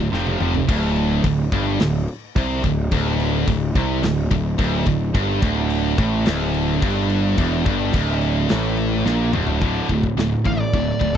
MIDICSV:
0, 0, Header, 1, 5, 480
1, 0, Start_track
1, 0, Key_signature, -1, "minor"
1, 0, Tempo, 558140
1, 587, Time_signature, 4, 2, 24, 8
1, 9610, End_track
2, 0, Start_track
2, 0, Title_t, "Lead electric guitar"
2, 0, Program_c, 0, 29
2, 9000, Note_on_c, 0, 77, 94
2, 9114, Note_off_c, 0, 77, 0
2, 9114, Note_on_c, 0, 74, 88
2, 9575, Note_off_c, 0, 74, 0
2, 9610, End_track
3, 0, Start_track
3, 0, Title_t, "Distorted electric guitar"
3, 0, Program_c, 1, 30
3, 0, Note_on_c, 1, 38, 61
3, 0, Note_on_c, 1, 45, 77
3, 109, Note_off_c, 1, 38, 0
3, 110, Note_off_c, 1, 45, 0
3, 112, Note_on_c, 1, 41, 87
3, 117, Note_on_c, 1, 48, 88
3, 121, Note_on_c, 1, 53, 101
3, 335, Note_off_c, 1, 41, 0
3, 338, Note_off_c, 1, 48, 0
3, 340, Note_off_c, 1, 53, 0
3, 357, Note_on_c, 1, 41, 87
3, 365, Note_on_c, 1, 48, 87
3, 365, Note_on_c, 1, 53, 88
3, 458, Note_off_c, 1, 41, 0
3, 462, Note_off_c, 1, 48, 0
3, 462, Note_off_c, 1, 53, 0
3, 476, Note_on_c, 1, 48, 65
3, 478, Note_on_c, 1, 41, 59
3, 588, Note_off_c, 1, 41, 0
3, 592, Note_off_c, 1, 48, 0
3, 592, Note_on_c, 1, 38, 102
3, 1061, Note_off_c, 1, 38, 0
3, 1072, Note_on_c, 1, 38, 77
3, 1262, Note_off_c, 1, 38, 0
3, 1318, Note_on_c, 1, 43, 105
3, 1547, Note_off_c, 1, 43, 0
3, 1557, Note_on_c, 1, 38, 72
3, 1745, Note_off_c, 1, 38, 0
3, 2044, Note_on_c, 1, 48, 112
3, 2270, Note_off_c, 1, 48, 0
3, 2282, Note_on_c, 1, 38, 76
3, 2468, Note_off_c, 1, 38, 0
3, 2514, Note_on_c, 1, 38, 110
3, 2980, Note_off_c, 1, 38, 0
3, 2990, Note_on_c, 1, 38, 71
3, 3182, Note_off_c, 1, 38, 0
3, 3236, Note_on_c, 1, 48, 111
3, 3466, Note_off_c, 1, 48, 0
3, 3469, Note_on_c, 1, 38, 69
3, 3662, Note_off_c, 1, 38, 0
3, 3708, Note_on_c, 1, 38, 78
3, 3901, Note_off_c, 1, 38, 0
3, 3941, Note_on_c, 1, 38, 111
3, 4178, Note_off_c, 1, 38, 0
3, 4188, Note_on_c, 1, 38, 75
3, 4381, Note_off_c, 1, 38, 0
3, 4426, Note_on_c, 1, 43, 110
3, 4657, Note_off_c, 1, 43, 0
3, 4661, Note_on_c, 1, 38, 104
3, 5138, Note_off_c, 1, 38, 0
3, 5146, Note_on_c, 1, 45, 109
3, 5377, Note_off_c, 1, 45, 0
3, 5380, Note_on_c, 1, 38, 102
3, 5858, Note_off_c, 1, 38, 0
3, 5865, Note_on_c, 1, 43, 111
3, 6340, Note_off_c, 1, 43, 0
3, 6350, Note_on_c, 1, 40, 108
3, 6582, Note_off_c, 1, 40, 0
3, 6587, Note_on_c, 1, 43, 101
3, 6821, Note_off_c, 1, 43, 0
3, 6833, Note_on_c, 1, 38, 98
3, 7303, Note_off_c, 1, 38, 0
3, 7309, Note_on_c, 1, 45, 104
3, 7781, Note_off_c, 1, 45, 0
3, 7788, Note_on_c, 1, 46, 109
3, 8021, Note_off_c, 1, 46, 0
3, 8043, Note_on_c, 1, 38, 105
3, 8258, Note_off_c, 1, 38, 0
3, 8268, Note_on_c, 1, 38, 84
3, 8278, Note_on_c, 1, 45, 84
3, 8281, Note_on_c, 1, 50, 96
3, 8493, Note_off_c, 1, 38, 0
3, 8498, Note_off_c, 1, 45, 0
3, 8499, Note_off_c, 1, 50, 0
3, 8516, Note_on_c, 1, 38, 66
3, 8518, Note_on_c, 1, 45, 80
3, 8727, Note_off_c, 1, 38, 0
3, 8729, Note_off_c, 1, 45, 0
3, 8749, Note_on_c, 1, 38, 66
3, 8749, Note_on_c, 1, 45, 82
3, 8964, Note_off_c, 1, 38, 0
3, 8964, Note_off_c, 1, 45, 0
3, 8983, Note_on_c, 1, 38, 69
3, 8986, Note_on_c, 1, 45, 86
3, 9200, Note_off_c, 1, 38, 0
3, 9202, Note_off_c, 1, 45, 0
3, 9233, Note_on_c, 1, 38, 75
3, 9235, Note_on_c, 1, 45, 76
3, 9445, Note_off_c, 1, 38, 0
3, 9446, Note_off_c, 1, 45, 0
3, 9456, Note_on_c, 1, 38, 69
3, 9459, Note_on_c, 1, 45, 69
3, 9610, Note_off_c, 1, 38, 0
3, 9610, Note_off_c, 1, 45, 0
3, 9610, End_track
4, 0, Start_track
4, 0, Title_t, "Picked electric bass"
4, 0, Program_c, 2, 34
4, 109, Note_on_c, 2, 29, 85
4, 303, Note_off_c, 2, 29, 0
4, 348, Note_on_c, 2, 29, 78
4, 542, Note_off_c, 2, 29, 0
4, 590, Note_on_c, 2, 26, 101
4, 1036, Note_off_c, 2, 26, 0
4, 1070, Note_on_c, 2, 26, 88
4, 1293, Note_off_c, 2, 26, 0
4, 1309, Note_on_c, 2, 31, 96
4, 1533, Note_off_c, 2, 31, 0
4, 1552, Note_on_c, 2, 26, 80
4, 1774, Note_off_c, 2, 26, 0
4, 2028, Note_on_c, 2, 36, 98
4, 2252, Note_off_c, 2, 36, 0
4, 2271, Note_on_c, 2, 26, 82
4, 2494, Note_off_c, 2, 26, 0
4, 2513, Note_on_c, 2, 26, 97
4, 2958, Note_off_c, 2, 26, 0
4, 2989, Note_on_c, 2, 26, 88
4, 3213, Note_off_c, 2, 26, 0
4, 3226, Note_on_c, 2, 36, 97
4, 3451, Note_off_c, 2, 36, 0
4, 3467, Note_on_c, 2, 26, 86
4, 3692, Note_off_c, 2, 26, 0
4, 3706, Note_on_c, 2, 26, 87
4, 3931, Note_off_c, 2, 26, 0
4, 3945, Note_on_c, 2, 26, 96
4, 4171, Note_off_c, 2, 26, 0
4, 4185, Note_on_c, 2, 26, 90
4, 4411, Note_off_c, 2, 26, 0
4, 4423, Note_on_c, 2, 31, 103
4, 4650, Note_off_c, 2, 31, 0
4, 4662, Note_on_c, 2, 26, 110
4, 5112, Note_off_c, 2, 26, 0
4, 5146, Note_on_c, 2, 33, 100
4, 5371, Note_off_c, 2, 33, 0
4, 5391, Note_on_c, 2, 26, 104
4, 5837, Note_off_c, 2, 26, 0
4, 5870, Note_on_c, 2, 31, 96
4, 6316, Note_off_c, 2, 31, 0
4, 6343, Note_on_c, 2, 28, 102
4, 6569, Note_off_c, 2, 28, 0
4, 6589, Note_on_c, 2, 31, 101
4, 6812, Note_off_c, 2, 31, 0
4, 6825, Note_on_c, 2, 26, 97
4, 7273, Note_off_c, 2, 26, 0
4, 7324, Note_on_c, 2, 33, 99
4, 7763, Note_off_c, 2, 33, 0
4, 7789, Note_on_c, 2, 34, 95
4, 8011, Note_off_c, 2, 34, 0
4, 8024, Note_on_c, 2, 26, 94
4, 8249, Note_off_c, 2, 26, 0
4, 8272, Note_on_c, 2, 26, 89
4, 8419, Note_off_c, 2, 26, 0
4, 8513, Note_on_c, 2, 26, 91
4, 8659, Note_off_c, 2, 26, 0
4, 8742, Note_on_c, 2, 26, 88
4, 8892, Note_off_c, 2, 26, 0
4, 8986, Note_on_c, 2, 33, 83
4, 9135, Note_off_c, 2, 33, 0
4, 9230, Note_on_c, 2, 26, 92
4, 9377, Note_off_c, 2, 26, 0
4, 9469, Note_on_c, 2, 26, 88
4, 9610, Note_off_c, 2, 26, 0
4, 9610, End_track
5, 0, Start_track
5, 0, Title_t, "Drums"
5, 119, Note_on_c, 9, 38, 59
5, 205, Note_off_c, 9, 38, 0
5, 230, Note_on_c, 9, 48, 60
5, 316, Note_off_c, 9, 48, 0
5, 348, Note_on_c, 9, 45, 81
5, 434, Note_off_c, 9, 45, 0
5, 470, Note_on_c, 9, 43, 82
5, 556, Note_off_c, 9, 43, 0
5, 591, Note_on_c, 9, 36, 108
5, 593, Note_on_c, 9, 49, 116
5, 593, Note_on_c, 9, 57, 86
5, 677, Note_off_c, 9, 36, 0
5, 679, Note_off_c, 9, 49, 0
5, 679, Note_off_c, 9, 57, 0
5, 824, Note_on_c, 9, 57, 64
5, 910, Note_off_c, 9, 57, 0
5, 1067, Note_on_c, 9, 36, 103
5, 1067, Note_on_c, 9, 57, 87
5, 1153, Note_off_c, 9, 36, 0
5, 1153, Note_off_c, 9, 57, 0
5, 1306, Note_on_c, 9, 57, 68
5, 1308, Note_on_c, 9, 36, 106
5, 1392, Note_off_c, 9, 57, 0
5, 1394, Note_off_c, 9, 36, 0
5, 1545, Note_on_c, 9, 57, 90
5, 1555, Note_on_c, 9, 38, 111
5, 1631, Note_off_c, 9, 57, 0
5, 1641, Note_off_c, 9, 38, 0
5, 1789, Note_on_c, 9, 57, 66
5, 1875, Note_off_c, 9, 57, 0
5, 2028, Note_on_c, 9, 57, 92
5, 2030, Note_on_c, 9, 36, 113
5, 2114, Note_off_c, 9, 57, 0
5, 2116, Note_off_c, 9, 36, 0
5, 2266, Note_on_c, 9, 57, 65
5, 2269, Note_on_c, 9, 36, 90
5, 2352, Note_off_c, 9, 57, 0
5, 2355, Note_off_c, 9, 36, 0
5, 2504, Note_on_c, 9, 57, 90
5, 2510, Note_on_c, 9, 36, 107
5, 2590, Note_off_c, 9, 57, 0
5, 2596, Note_off_c, 9, 36, 0
5, 2747, Note_on_c, 9, 57, 71
5, 2833, Note_off_c, 9, 57, 0
5, 2987, Note_on_c, 9, 57, 92
5, 2989, Note_on_c, 9, 36, 98
5, 3073, Note_off_c, 9, 57, 0
5, 3075, Note_off_c, 9, 36, 0
5, 3227, Note_on_c, 9, 57, 67
5, 3228, Note_on_c, 9, 36, 106
5, 3313, Note_off_c, 9, 57, 0
5, 3314, Note_off_c, 9, 36, 0
5, 3466, Note_on_c, 9, 57, 90
5, 3476, Note_on_c, 9, 38, 117
5, 3552, Note_off_c, 9, 57, 0
5, 3562, Note_off_c, 9, 38, 0
5, 3708, Note_on_c, 9, 36, 99
5, 3708, Note_on_c, 9, 57, 66
5, 3794, Note_off_c, 9, 36, 0
5, 3794, Note_off_c, 9, 57, 0
5, 3944, Note_on_c, 9, 57, 86
5, 3946, Note_on_c, 9, 36, 109
5, 4030, Note_off_c, 9, 57, 0
5, 4032, Note_off_c, 9, 36, 0
5, 4178, Note_on_c, 9, 57, 57
5, 4185, Note_on_c, 9, 36, 93
5, 4264, Note_off_c, 9, 57, 0
5, 4271, Note_off_c, 9, 36, 0
5, 4427, Note_on_c, 9, 36, 105
5, 4428, Note_on_c, 9, 57, 79
5, 4513, Note_off_c, 9, 36, 0
5, 4514, Note_off_c, 9, 57, 0
5, 4665, Note_on_c, 9, 36, 112
5, 4665, Note_on_c, 9, 57, 64
5, 4751, Note_off_c, 9, 36, 0
5, 4751, Note_off_c, 9, 57, 0
5, 4903, Note_on_c, 9, 57, 83
5, 4989, Note_off_c, 9, 57, 0
5, 5143, Note_on_c, 9, 57, 67
5, 5145, Note_on_c, 9, 36, 110
5, 5229, Note_off_c, 9, 57, 0
5, 5231, Note_off_c, 9, 36, 0
5, 5381, Note_on_c, 9, 57, 85
5, 5391, Note_on_c, 9, 38, 121
5, 5467, Note_off_c, 9, 57, 0
5, 5477, Note_off_c, 9, 38, 0
5, 5626, Note_on_c, 9, 57, 67
5, 5712, Note_off_c, 9, 57, 0
5, 5867, Note_on_c, 9, 57, 87
5, 5869, Note_on_c, 9, 36, 107
5, 5953, Note_off_c, 9, 57, 0
5, 5955, Note_off_c, 9, 36, 0
5, 6103, Note_on_c, 9, 57, 65
5, 6189, Note_off_c, 9, 57, 0
5, 6343, Note_on_c, 9, 57, 86
5, 6349, Note_on_c, 9, 36, 101
5, 6429, Note_off_c, 9, 57, 0
5, 6435, Note_off_c, 9, 36, 0
5, 6588, Note_on_c, 9, 36, 108
5, 6588, Note_on_c, 9, 57, 66
5, 6674, Note_off_c, 9, 36, 0
5, 6674, Note_off_c, 9, 57, 0
5, 6821, Note_on_c, 9, 57, 92
5, 6829, Note_on_c, 9, 36, 113
5, 6907, Note_off_c, 9, 57, 0
5, 6915, Note_off_c, 9, 36, 0
5, 7064, Note_on_c, 9, 57, 67
5, 7150, Note_off_c, 9, 57, 0
5, 7301, Note_on_c, 9, 57, 88
5, 7311, Note_on_c, 9, 38, 111
5, 7387, Note_off_c, 9, 57, 0
5, 7397, Note_off_c, 9, 38, 0
5, 7543, Note_on_c, 9, 57, 63
5, 7629, Note_off_c, 9, 57, 0
5, 7791, Note_on_c, 9, 38, 69
5, 7877, Note_off_c, 9, 38, 0
5, 8027, Note_on_c, 9, 45, 92
5, 8113, Note_off_c, 9, 45, 0
5, 8142, Note_on_c, 9, 43, 92
5, 8228, Note_off_c, 9, 43, 0
5, 8263, Note_on_c, 9, 57, 54
5, 8269, Note_on_c, 9, 36, 98
5, 8349, Note_off_c, 9, 57, 0
5, 8355, Note_off_c, 9, 36, 0
5, 8508, Note_on_c, 9, 36, 84
5, 8594, Note_off_c, 9, 36, 0
5, 8630, Note_on_c, 9, 36, 80
5, 8716, Note_off_c, 9, 36, 0
5, 8755, Note_on_c, 9, 57, 56
5, 8764, Note_on_c, 9, 38, 112
5, 8841, Note_off_c, 9, 57, 0
5, 8850, Note_off_c, 9, 38, 0
5, 8992, Note_on_c, 9, 36, 84
5, 9078, Note_off_c, 9, 36, 0
5, 9232, Note_on_c, 9, 36, 102
5, 9236, Note_on_c, 9, 57, 56
5, 9318, Note_off_c, 9, 36, 0
5, 9322, Note_off_c, 9, 57, 0
5, 9469, Note_on_c, 9, 36, 89
5, 9555, Note_off_c, 9, 36, 0
5, 9610, End_track
0, 0, End_of_file